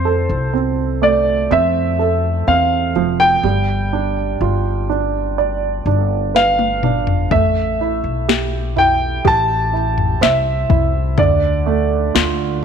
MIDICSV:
0, 0, Header, 1, 5, 480
1, 0, Start_track
1, 0, Key_signature, 0, "minor"
1, 0, Tempo, 967742
1, 1706, Time_signature, 4, 2, 24, 8
1, 6271, End_track
2, 0, Start_track
2, 0, Title_t, "Grand piano"
2, 0, Program_c, 0, 0
2, 0, Note_on_c, 0, 72, 60
2, 246, Note_off_c, 0, 72, 0
2, 511, Note_on_c, 0, 74, 66
2, 755, Note_off_c, 0, 74, 0
2, 755, Note_on_c, 0, 76, 76
2, 1229, Note_on_c, 0, 77, 68
2, 1245, Note_off_c, 0, 76, 0
2, 1568, Note_off_c, 0, 77, 0
2, 1586, Note_on_c, 0, 79, 86
2, 3006, Note_off_c, 0, 79, 0
2, 3154, Note_on_c, 0, 77, 65
2, 3610, Note_off_c, 0, 77, 0
2, 3628, Note_on_c, 0, 76, 70
2, 4087, Note_off_c, 0, 76, 0
2, 4357, Note_on_c, 0, 79, 76
2, 4598, Note_off_c, 0, 79, 0
2, 4600, Note_on_c, 0, 81, 87
2, 5070, Note_on_c, 0, 76, 70
2, 5087, Note_off_c, 0, 81, 0
2, 5548, Note_on_c, 0, 74, 65
2, 5562, Note_off_c, 0, 76, 0
2, 6007, Note_off_c, 0, 74, 0
2, 6271, End_track
3, 0, Start_track
3, 0, Title_t, "Upright piano"
3, 0, Program_c, 1, 0
3, 0, Control_c, 1, 64, 127
3, 0, Note_on_c, 1, 60, 44
3, 0, Note_on_c, 1, 65, 53
3, 25, Note_on_c, 1, 69, 47
3, 258, Note_off_c, 1, 60, 0
3, 266, Note_on_c, 1, 60, 46
3, 504, Note_on_c, 1, 57, 48
3, 740, Note_off_c, 1, 60, 0
3, 747, Note_on_c, 1, 60, 50
3, 966, Note_off_c, 1, 69, 0
3, 988, Note_on_c, 1, 69, 43
3, 1221, Note_off_c, 1, 60, 0
3, 1228, Note_on_c, 1, 60, 43
3, 1445, Note_off_c, 1, 57, 0
3, 1445, Note_off_c, 1, 65, 0
3, 1468, Note_on_c, 1, 53, 56
3, 1687, Note_off_c, 1, 69, 0
3, 1693, Note_off_c, 1, 60, 0
3, 1700, Note_off_c, 1, 53, 0
3, 1707, Note_on_c, 1, 55, 55
3, 1711, Control_c, 1, 64, 0
3, 1789, Control_c, 1, 64, 127
3, 1949, Note_on_c, 1, 62, 44
3, 2190, Note_on_c, 1, 65, 45
3, 2420, Note_off_c, 1, 62, 0
3, 2428, Note_on_c, 1, 62, 42
3, 2669, Note_on_c, 1, 74, 51
3, 2903, Note_off_c, 1, 62, 0
3, 2911, Note_on_c, 1, 62, 42
3, 3128, Note_off_c, 1, 65, 0
3, 3148, Note_on_c, 1, 71, 47
3, 3385, Note_off_c, 1, 62, 0
3, 3392, Note_on_c, 1, 62, 44
3, 3607, Note_off_c, 1, 55, 0
3, 3608, Note_off_c, 1, 74, 0
3, 3612, Note_off_c, 1, 71, 0
3, 3622, Note_off_c, 1, 62, 0
3, 3632, Control_c, 1, 64, 0
3, 3632, Note_on_c, 1, 57, 52
3, 3731, Control_c, 1, 64, 127
3, 3874, Note_on_c, 1, 64, 49
3, 4109, Note_on_c, 1, 67, 46
3, 4339, Note_off_c, 1, 64, 0
3, 4346, Note_on_c, 1, 64, 46
3, 4580, Note_off_c, 1, 67, 0
3, 4588, Note_on_c, 1, 67, 54
3, 4819, Note_off_c, 1, 64, 0
3, 4826, Note_on_c, 1, 64, 45
3, 5065, Note_on_c, 1, 72, 46
3, 5297, Note_off_c, 1, 64, 0
3, 5304, Note_on_c, 1, 64, 49
3, 5527, Note_off_c, 1, 67, 0
3, 5529, Note_off_c, 1, 57, 0
3, 5531, Note_off_c, 1, 72, 0
3, 5538, Note_off_c, 1, 64, 0
3, 5544, Note_on_c, 1, 50, 57
3, 5552, Control_c, 1, 64, 0
3, 5644, Control_c, 1, 64, 127
3, 5785, Note_on_c, 1, 57, 51
3, 6025, Note_on_c, 1, 65, 53
3, 6256, Note_off_c, 1, 57, 0
3, 6271, Note_off_c, 1, 50, 0
3, 6271, Note_off_c, 1, 65, 0
3, 6271, End_track
4, 0, Start_track
4, 0, Title_t, "Upright bass"
4, 0, Program_c, 2, 32
4, 0, Note_on_c, 2, 41, 88
4, 127, Note_off_c, 2, 41, 0
4, 146, Note_on_c, 2, 36, 74
4, 726, Note_off_c, 2, 36, 0
4, 749, Note_on_c, 2, 41, 87
4, 1208, Note_off_c, 2, 41, 0
4, 1227, Note_on_c, 2, 40, 80
4, 1450, Note_off_c, 2, 40, 0
4, 1466, Note_on_c, 2, 29, 73
4, 1689, Note_off_c, 2, 29, 0
4, 1703, Note_on_c, 2, 31, 82
4, 2164, Note_off_c, 2, 31, 0
4, 2185, Note_on_c, 2, 31, 81
4, 2886, Note_off_c, 2, 31, 0
4, 2904, Note_on_c, 2, 31, 78
4, 3627, Note_off_c, 2, 31, 0
4, 3627, Note_on_c, 2, 33, 84
4, 3966, Note_off_c, 2, 33, 0
4, 3987, Note_on_c, 2, 35, 69
4, 4566, Note_off_c, 2, 35, 0
4, 4587, Note_on_c, 2, 33, 86
4, 5047, Note_off_c, 2, 33, 0
4, 5065, Note_on_c, 2, 36, 73
4, 5289, Note_off_c, 2, 36, 0
4, 5306, Note_on_c, 2, 36, 77
4, 5529, Note_off_c, 2, 36, 0
4, 5545, Note_on_c, 2, 38, 94
4, 6006, Note_off_c, 2, 38, 0
4, 6027, Note_on_c, 2, 38, 88
4, 6271, Note_off_c, 2, 38, 0
4, 6271, End_track
5, 0, Start_track
5, 0, Title_t, "Drums"
5, 3154, Note_on_c, 9, 38, 46
5, 3204, Note_off_c, 9, 38, 0
5, 3268, Note_on_c, 9, 48, 49
5, 3318, Note_off_c, 9, 48, 0
5, 3388, Note_on_c, 9, 45, 71
5, 3437, Note_off_c, 9, 45, 0
5, 3507, Note_on_c, 9, 43, 70
5, 3557, Note_off_c, 9, 43, 0
5, 3627, Note_on_c, 9, 36, 100
5, 3627, Note_on_c, 9, 43, 102
5, 3676, Note_off_c, 9, 43, 0
5, 3677, Note_off_c, 9, 36, 0
5, 4114, Note_on_c, 9, 38, 92
5, 4163, Note_off_c, 9, 38, 0
5, 4348, Note_on_c, 9, 43, 51
5, 4398, Note_off_c, 9, 43, 0
5, 4587, Note_on_c, 9, 36, 73
5, 4637, Note_off_c, 9, 36, 0
5, 4949, Note_on_c, 9, 43, 61
5, 4998, Note_off_c, 9, 43, 0
5, 5074, Note_on_c, 9, 38, 78
5, 5123, Note_off_c, 9, 38, 0
5, 5306, Note_on_c, 9, 36, 78
5, 5308, Note_on_c, 9, 43, 59
5, 5356, Note_off_c, 9, 36, 0
5, 5357, Note_off_c, 9, 43, 0
5, 5543, Note_on_c, 9, 43, 105
5, 5545, Note_on_c, 9, 36, 106
5, 5593, Note_off_c, 9, 43, 0
5, 5594, Note_off_c, 9, 36, 0
5, 6029, Note_on_c, 9, 38, 89
5, 6079, Note_off_c, 9, 38, 0
5, 6271, End_track
0, 0, End_of_file